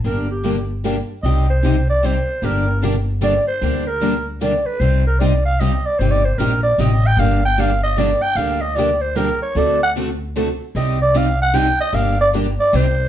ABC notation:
X:1
M:3/4
L:1/8
Q:"Swing" 1/4=151
K:Gm
V:1 name="Clarinet"
B G2 z3 | e c2 d c2 | B2 z2 d c- | c B2 z d =B |
c B d f e d | (3c d c B d e g | f g f e d g | f e d c B ^c |
d ^f z4 | e d f ^f g e | f d z d c2 |]
V:2 name="Steel-string acoustic guitar"
[D,G,B,DG] z [D,G,B,DG] z [D,G,B,DG] z | [C,G,CEG] z [C,G,CEG] z [C,G,CEG] z | [D,G,B,DG] z [D,G,B,DG] z [D,G,B,DG] z | [D,G,B,DG] z [D,G,B,DG] z [D,G,B,DG] z |
[C,G,CEG] z [C,G,CEG] z [C,G,CEG] z | [C,G,CEG] z [C,G,CEG] z [C,G,CEG] z | [D,G,B,DG] z [D,G,B,DG] z [D,G,B,DG] z | [D,G,B,DG] z [D,G,B,DG] z [D,G,B,DG] z |
[D,A,C^FA] z [D,A,CFA] z [D,A,CFA] z | [C,G,CEG] z [C,G,CEG] z [C,G,CEG] z | [D,G,B,DG] z [D,G,B,DG] z [C,G,CEG] z |]
V:3 name="Steel-string acoustic guitar"
[D,G,B,DG] z [D,G,B,DG] z [D,G,B,DG] z | [C,G,CEG] z [C,G,CEG] z [C,G,CEG] z | [D,G,B,DG] z [D,G,B,DG] z [D,G,B,DG] z | [D,G,B,DG] z [D,G,B,DG] z [D,G,B,DG] z |
[C,G,CEG] z [C,G,CEG] z [C,G,CEG] z | [C,G,CEG] z [C,G,CEG] z [C,G,CEG] z | [D,G,B,DG] z [D,G,B,DG] z [D,G,B,DG] z | [D,G,B,DG] z [D,G,B,DG] z [D,G,B,DG] z |
[D,A,C^FA] z [D,A,CFA] z [D,A,CFA] z | [C,G,CEG] z [C,G,CEG] z [C,G,CEG] z | [D,G,B,DG] z [D,G,B,DG] z [C,G,CEG] z |]
V:4 name="Upright bass" clef=bass
G,,,6 | C,,6 | G,,,6 | D,,6 |
C,,6 | G,,,2 B,,,2 A,,,2 | G,,,6 | D,,6 |
D,,6 | C,,6 | G,,,4 C,,2 |]